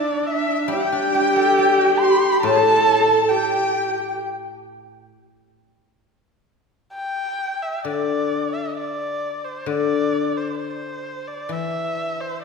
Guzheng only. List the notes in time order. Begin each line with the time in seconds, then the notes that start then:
0.68 G3
0.92 D4
1.15 G4
1.36 A4
1.59 D5
2.43 A2
7.85 D3
9.66 D3
11.49 E3